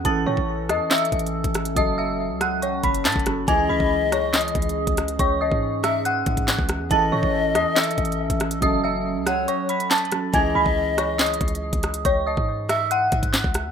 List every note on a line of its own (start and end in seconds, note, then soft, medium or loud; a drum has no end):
0.00 1.72 E3 medium
0.00 6.87 C#4 medium
0.05 0.26 A1 loud
0.05 1.75 E3 medium
0.05 1.73 C#4 medium
0.05 3.44 A4 medium
0.05 1.74 A4 medium
0.05 0.24 A5 loud
0.05 0.25 A6 medium
0.05 kick loud
0.05 closed hi-hat medium
0.26 0.37 A2 loud
0.26 0.46 C#5 medium
0.26 0.46 C#6 medium
0.37 0.71 A1 loud
0.37 kick medium
0.69 0.79 E2 loud
0.69 0.89 D#5 medium
0.69 0.89 D#6 medium
0.69 cross-stick loud
0.69 closed hi-hat medium
0.91 1.73 E5 medium
0.91 1.73 E6 medium
0.91 snare loud
0.91 clap medium
0.91 closed hi-hat medium
0.98 closed hi-hat medium
1.05 closed hi-hat medium
1.12 1.43 A1 loud
1.12 kick loud
1.12 closed hi-hat medium
1.19 closed hi-hat medium
1.27 closed hi-hat medium
1.44 1.75 A1 loud
1.44 kick loud
1.44 closed hi-hat medium
1.54 cross-stick loud
1.54 closed hi-hat loud
1.65 closed hi-hat loud
1.75 2.32 F#1 loud
1.75 3.23 F#3 medium
1.75 3.46 F#3 medium
1.75 3.23 C#4 medium
1.75 3.24 A4 medium
1.75 1.96 D#5 medium
1.75 1.96 D#6 loud
1.75 kick loud
1.75 closed hi-hat medium
1.98 2.18 E5 medium
1.98 2.17 E6 medium
2.30 2.81 C#2 loud
2.41 2.61 F#5 medium
2.41 2.60 F#6 medium
2.41 cross-stick loud
2.41 closed hi-hat medium
2.62 2.82 C#5 medium
2.62 2.81 C#6 medium
2.62 closed hi-hat medium
2.83 3.07 F#1 loud
2.83 3.03 B5 medium
2.83 3.03 B6 medium
2.83 kick loud
2.83 closed hi-hat medium
2.94 closed hi-hat medium
3.05 3.15 A2 loud
3.05 3.24 A5 medium
3.05 3.25 A6 medium
3.05 snare loud
3.05 clap loud
3.05 closed hi-hat medium
3.12 3.47 F#1 loud
3.12 kick loud
3.12 closed hi-hat medium
3.19 closed hi-hat soft
3.26 3.48 F#3 medium
3.26 3.47 C#4 soft
3.26 3.48 A4 medium
3.26 cross-stick loud
3.26 closed hi-hat loud
3.47 3.68 C#2 loud
3.47 6.86 E3 medium
3.47 8.58 E3 medium
3.47 6.87 C#4 medium
3.47 6.87 G#4 medium
3.47 6.88 G#4 medium
3.47 4.72 D#5 loud
3.47 3.67 G#5 loud
3.47 3.68 G#6 medium
3.47 kick loud
3.47 closed hi-hat medium
3.69 3.80 C#2 loud
3.69 3.89 B5 medium
3.69 3.89 B6 medium
3.80 4.52 C#2 loud
3.80 kick medium
4.12 4.32 C#5 medium
4.12 4.32 C#6 medium
4.12 cross-stick loud
4.12 closed hi-hat medium
4.34 5.16 D#5 medium
4.34 5.15 D#6 medium
4.34 snare loud
4.34 clap medium
4.34 closed hi-hat medium
4.41 closed hi-hat medium
4.48 closed hi-hat medium
4.55 4.86 C#2 loud
4.55 kick loud
4.55 closed hi-hat medium
4.62 closed hi-hat medium
4.69 closed hi-hat medium
4.87 5.18 C#2 loud
4.87 kick loud
4.87 closed hi-hat medium
4.97 cross-stick loud
4.97 closed hi-hat loud
5.08 closed hi-hat medium
5.19 5.50 C#2 loud
5.19 5.39 C#5 medium
5.19 5.39 C#6 loud
5.19 kick loud
5.19 closed hi-hat medium
5.41 5.61 D#5 medium
5.41 5.60 D#6 medium
5.52 6.24 G#2 loud
5.52 kick medium
5.84 6.04 E5 medium
5.84 6.03 E5 medium
5.84 6.03 E6 medium
5.84 cross-stick loud
5.84 closed hi-hat medium
6.05 6.87 F#5 medium
6.05 6.87 F#6 medium
6.05 closed hi-hat medium
6.26 6.57 G#2 loud
6.26 kick loud
6.26 closed hi-hat medium
6.37 kick loud
6.37 closed hi-hat medium
6.48 snare loud
6.48 clap medium
6.48 closed hi-hat medium
6.59 6.82 C#2 loud
6.59 kick loud
6.69 cross-stick loud
6.69 closed hi-hat loud
6.80 6.90 E2 loud
6.90 7.11 A1 loud
6.90 8.58 E3 medium
6.90 10.30 C#4 medium
6.90 8.59 C#4 medium
6.90 10.30 A4 medium
6.90 8.60 A4 medium
6.90 8.15 D#5 loud
6.90 7.10 A5 loud
6.90 7.11 A6 medium
6.90 kick loud
6.90 closed hi-hat medium
7.12 7.22 A2 loud
7.12 7.32 C#5 medium
7.12 7.32 C#6 medium
7.23 7.57 A1 loud
7.23 kick loud
7.55 7.65 E2 loud
7.55 7.75 D#5 medium
7.55 7.74 D#6 medium
7.55 cross-stick loud
7.55 closed hi-hat medium
7.76 8.59 E5 medium
7.76 8.58 E6 medium
7.76 snare loud
7.76 clap medium
7.76 closed hi-hat medium
7.84 closed hi-hat medium
7.91 closed hi-hat medium
7.98 8.29 A1 loud
7.98 kick loud
7.98 closed hi-hat medium
8.05 closed hi-hat medium
8.12 closed hi-hat medium
8.30 8.61 A1 loud
8.30 kick loud
8.30 closed hi-hat medium
8.40 cross-stick loud
8.40 closed hi-hat loud
8.51 closed hi-hat loud
8.61 9.17 F#1 loud
8.61 10.08 F#3 medium
8.61 10.32 F#3 medium
8.61 10.09 C#4 medium
8.61 10.10 A4 medium
8.61 8.82 D#5 medium
8.61 8.81 D#6 loud
8.61 kick loud
8.61 closed hi-hat medium
8.84 9.03 E5 medium
8.84 9.03 E6 medium
9.16 9.46 C#2 loud
9.26 9.87 C#5 medium
9.26 9.46 F#5 medium
9.26 9.46 F#6 medium
9.26 cross-stick loud
9.26 closed hi-hat medium
9.48 9.68 C#5 medium
9.48 9.67 C#6 medium
9.48 closed hi-hat medium
9.69 9.89 B5 medium
9.69 9.89 B6 medium
9.69 closed hi-hat medium
9.80 closed hi-hat medium
9.91 10.10 A5 medium
9.91 10.10 A6 medium
9.91 snare loud
9.91 clap medium
9.91 closed hi-hat medium
9.98 closed hi-hat medium
10.05 closed hi-hat soft
10.12 10.33 F#3 medium
10.12 10.33 C#4 soft
10.12 10.34 A4 medium
10.12 cross-stick loud
10.12 closed hi-hat loud
10.33 10.54 C#2 loud
10.33 13.72 E3 medium
10.33 13.72 C#4 medium
10.33 13.72 G#4 medium
10.33 11.58 D#5 loud
10.33 10.53 G#5 loud
10.33 10.53 G#6 medium
10.33 kick loud
10.33 closed hi-hat medium
10.55 10.65 C#2 loud
10.55 10.74 B5 medium
10.55 10.75 B6 medium
10.66 11.38 C#2 loud
10.66 kick loud
10.98 11.18 C#5 medium
10.98 11.17 C#6 medium
10.98 cross-stick loud
10.98 closed hi-hat medium
11.19 12.01 D#5 medium
11.19 12.01 D#6 medium
11.19 snare loud
11.19 clap medium
11.19 closed hi-hat medium
11.26 closed hi-hat medium
11.34 closed hi-hat medium
11.41 11.72 C#2 loud
11.41 kick loud
11.41 closed hi-hat medium
11.48 closed hi-hat medium
11.55 closed hi-hat medium
11.73 12.04 C#2 loud
11.73 kick loud
11.73 closed hi-hat medium
11.83 cross-stick loud
11.83 closed hi-hat loud
11.94 closed hi-hat loud
12.05 12.36 C#2 loud
12.05 12.25 C#5 medium
12.05 12.24 C#6 loud
12.05 kick loud
12.05 closed hi-hat medium
12.27 12.46 D#5 medium
12.27 12.46 D#6 medium
12.37 13.09 G#2 loud
12.37 kick loud
12.69 12.90 E5 medium
12.69 12.89 E5 medium
12.69 12.89 E6 medium
12.69 cross-stick loud
12.69 closed hi-hat medium
12.91 13.72 F#5 medium
12.91 13.72 F#6 medium
12.91 closed hi-hat medium
13.12 13.43 G#2 loud
13.12 kick loud
13.12 closed hi-hat medium
13.23 kick loud
13.23 closed hi-hat medium
13.34 snare loud
13.34 clap loud
13.34 closed hi-hat medium
13.44 13.67 C#2 loud
13.44 kick loud
13.54 cross-stick loud
13.54 closed hi-hat loud
13.66 13.72 E2 loud